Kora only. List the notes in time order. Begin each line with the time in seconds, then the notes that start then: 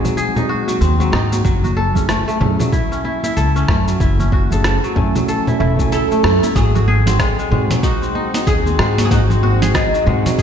Already playing: G#3 C4 D#4 F#4 G#4
0.05 F#3
0.17 G#4
0.36 D#4
0.49 F#4
0.68 F#3
0.81 C4
1.00 F#3
1.13 D#4
1.32 F#3
1.45 F#3
1.64 F#4
1.77 A4
1.96 C#4
2.09 A3
2.28 A3
2.41 A3
2.60 F#3
2.72 E4
2.92 C#4
3.05 E4
3.24 E4
3.37 A4
3.56 C#4
3.69 A3
3.88 F#3
4.01 E4
4.20 C#4
4.33 F#4
4.52 A4
4.65 A4
4.84 F#3
4.96 A3
5.16 F#3
5.28 A4
5.48 E4
5.60 E4
5.79 F#3
5.92 E4
6.12 A3
6.24 A3
6.43 E4
6.56 F#3
6.75 F#4
6.88 G#4
7.07 C4
7.20 G#3
7.39 G#3
7.52 G#3
7.70 F#3
7.83 D#4
8.02 C4
8.15 D#4
8.34 D#4
8.47 G#4
8.66 C4
8.79 G#3
8.98 F#3
9.11 D#4
9.30 C4
9.43 F#4
9.62 G#4
9.75 G#4
9.94 F#3
10.06 G#3
10.26 F#3
10.39 G#4